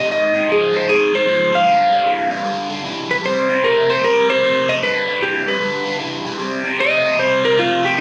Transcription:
Already playing: D#5
0.08 G#2 D#3 D#5
0.34 G#2 D#3
0.48 G#2 F3
0.52 G#4
0.72 G#2 F3
0.77 C5
0.88 G#2 D#3 G#4
1.13 G#2 D#3 C5
1.27 G#2 F3
1.52 G#2 F3 F5
1.65 G2 D3
1.90 G2 D3
2.04 G2 E3
2.30 G2 E3
2.44 G2 D3
2.69 G2 D3
2.84 G2 E3
3.10 G2 E3 B4
3.24 C3 G3 C5
3.49 C3 G3
3.63 C3 A3 A#4
3.89 C3 A3 C5
4.03 C3 G3 A#4
4.28 C3 G3 C5
4.43 C3 A3
4.68 C3 A3 D#5
4.82 G2 D3 B4
5.07 G2 D3
5.21 G2 E3 G4
5.46 G2 E3 B4
5.60 G2 D3
5.85 G2 D3
5.99 G2 E3
6.24 G2 E3
6.38 C3 G3
6.63 C3 G3
6.78 C3 A3 D#5
7.03 C3 A3
7.17 C3 G3 C5
7.42 C3 G3 A#4
7.57 C3 A3 F4
7.82 C3 A3 G4
7.96 F2 C3

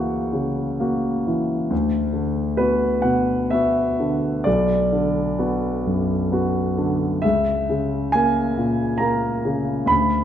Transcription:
Already playing: C#2 E3 A#3 F#4 C#5
0.33 C#3
0.80 A#3 F#4
1.27 E3
1.70 D2
2.13 D3
2.57 B3 F#4 B4
3.02 B2 F#5
3.50 B3 F#4 E5
4.00 D3
4.44 B1 D5
4.92 D3
5.39 B3 F#4
5.87 F#2
6.32 B3 F#4
6.78 D3
7.22 C#2 E5
7.69 C#3
8.12 A#3 A#4 G#5
8.57 A#2
8.98 A#3 A#4 A#5
9.45 C#3
9.86 D2 B5

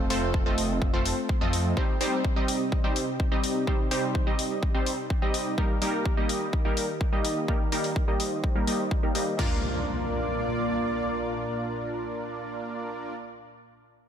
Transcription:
Already playing: A3 C4 F4
0.10 F1 A3 C4 F4 A4 C5, open hi-hat
0.34 kick
0.46 F1 A3 C4 F4 A4 D#5
0.58 open hi-hat
0.82 kick
0.94 F1 A3 C4 F4 A4 C5
1.05 open hi-hat
1.29 kick
1.41 F2 A3 C4 F4 A4 D#5
1.53 open hi-hat
1.77 C3 G3 C4 D#4 G4 C5, kick
2.01 G3 C4 D#4 G4 C5, open hi-hat
2.25 kick
2.36 G3 C4 D#4 G4 D#5
2.48 open hi-hat
2.72 kick
2.84 G3 C4 D#4 G4 C5
2.96 open hi-hat
3.20 kick
3.32 G3 C4 D#4 G4 D#5
3.44 open hi-hat
3.67 G3 C4 D#4 G4 C5, kick
3.91 G3 C4 D#4 G4 C5, open hi-hat
4.15 kick
4.27 G3 C4 D#4 G4 D#5
4.39 open hi-hat
4.63 kick
4.75 G3 C4 D#4 G4 C5
4.86 open hi-hat
5.10 kick
5.22 G3 C4 D#4 G4 D#5
5.34 open hi-hat
5.58 D#3 G3 A#3 D#4 G4 A#4, kick
5.82 G3 A#3 D#4 G4 A#4, open hi-hat
6.05 kick
6.17 G3 A#3 D#4 G4 D#5
6.29 open hi-hat
6.53 kick
6.65 G3 A#3 D#4 G4 A#4
6.77 open hi-hat
7.01 kick
7.13 G3 A#3 D#4 G4 D#5
7.25 open hi-hat
7.48 G3 A#3 D#4 G4 A#4 C5, kick
7.72 G3 A#3 D#4 G4 A#4, open hi-hat
7.84 open hi-hat
7.96 kick
8.08 G3 A#3 D#4 G4 D#5
8.20 open hi-hat
8.44 kick
8.56 G3 A#3 D#4 G4 A#4
8.67 G3 A#3 D#4 G4 D#5, open hi-hat
8.91 kick
9.03 G3 A#3 D#4 G4 A#4
9.15 G3 A#3 D#4 G4 D#5, open hi-hat
9.39 A#2 A#3 D4 F4 A#4 D5, kick, crash, impact

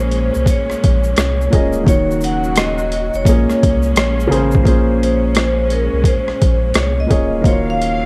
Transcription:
Already playing: A#1 A#2 G#3 A#3 C#4 G#4 C5
0.11 closed hi-hat
0.34 C2, shaker
0.46 kick, closed hi-hat, shaker
0.50 C#5
0.70 A#1, cross-stick, shaker
0.84 A#1, kick, closed hi-hat
1.04 shaker
1.16 C2, cross-stick, closed hi-hat, shaker
1.41 shaker
1.50 D1 A#2 A#3 C#4 G#4, kick, closed hi-hat
1.55 D#5
1.73 shaker
1.83 D#1 C#3 D#3 F#3 A#3 D#4 F#4, kick
1.88 C#5, closed hi-hat, shaker
2.11 shaker
2.21 F#5, closed hi-hat, shaker
2.44 shaker
2.56 D#5, cross-stick, closed hi-hat, shaker
2.78 shaker
2.92 closed hi-hat
3.14 F1 C#5, shaker
3.25 A#1 A#2 G#3 A#3 C#4, kick, closed hi-hat, shaker
3.29 G#4 C#5
3.49 C2, cross-stick, shaker
3.63 C2, kick, closed hi-hat
3.82 shaker
3.96 A#1, cross-stick, closed hi-hat, shaker
4.20 shaker
4.27 A1 C#3 A#3 C#4 G#4
4.32 C5, closed hi-hat
4.51 kick, shaker
4.62 A#1 A#2 G#3 A#3 C#4 G#4, kick
4.67 C5, closed hi-hat
5.03 C5, closed hi-hat
5.35 C5, cross-stick, closed hi-hat
5.70 A#4, closed hi-hat
5.93 C2
6.04 C5, kick, closed hi-hat
6.28 A#1, cross-stick
6.42 A#1, kick, closed hi-hat
6.74 C2 C#5, cross-stick, closed hi-hat
7.00 D#5
7.06 A#2 A#3 C#4
7.11 D1 G#4 C#5, kick, closed hi-hat
7.41 D#1 C#3 D#3 F#3 A#3 F4 F#4 F5, kick
7.45 C5 C#5, closed hi-hat
7.52 C#5
7.70 F5
7.82 closed hi-hat

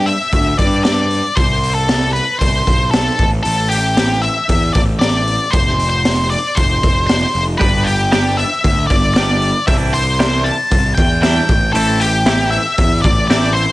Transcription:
Already playing: G2
0.06 E5, open hi-hat
0.33 D2, kick, open hi-hat
0.58 G2 D5, kick, open hi-hat
0.84 D5, snare, open hi-hat
1.11 open hi-hat
1.35 C2 C5, kick, open hi-hat
1.63 open hi-hat
1.75 A4
1.89 snare, open hi-hat
2.13 B4, open hi-hat
2.39 C2 C5, kick, open hi-hat
2.67 B1, kick, open hi-hat
2.91 A4, snare, open hi-hat
3.19 A1, kick, open hi-hat
3.43 A1 A4, open hi-hat
3.68 G4, open hi-hat
3.97 snare, open hi-hat
4.22 E5, open hi-hat
4.49 E2, kick, open hi-hat
4.73 A1 D5, kick, open hi-hat
4.99 D5, snare, open hi-hat
5.27 open hi-hat
5.51 F1 C5, kick, open hi-hat
5.67 snare
5.79 open hi-hat
5.90 C5
6.05 snare, open hi-hat
6.30 D5, open hi-hat
6.55 F1 C5, kick, open hi-hat
6.83 F1, kick, open hi-hat
7.07 C5, snare, open hi-hat
7.35 F1, open hi-hat
7.58 G1 G3 B3 D4 G4 B4, kick, open hi-hat
7.84 G4, open hi-hat
8.12 G3 B3 D4 G4, snare, open hi-hat
8.37 E5, open hi-hat
8.64 D2, kick, open hi-hat
8.87 G1 D5, kick, open hi-hat
9.14 G3 B3 D4 G4 D5, snare, open hi-hat
9.42 open hi-hat
9.67 C2 E3 G3 D4 E4 E5, kick, open hi-hat
9.94 C5, open hi-hat
10.19 E3 G3 D4 E4, snare, open hi-hat
10.44 A5, open hi-hat
10.71 C2, kick, open hi-hat
10.95 E2 G5, kick, open hi-hat
11.22 E3 G3 D4 E4 G5, snare, open hi-hat
11.49 A1, kick, open hi-hat
11.73 A1 E3 A3 C4 E4 A4, open hi-hat
12.00 G4, open hi-hat
12.26 E3 A3 C4 E4, snare, open hi-hat
12.50 E5, open hi-hat
12.78 E2, kick, open hi-hat
13.02 A1 D5, kick, open hi-hat
13.28 E3 A3 C4 E4 D5, snare, open hi-hat
13.53 C5, open hi-hat

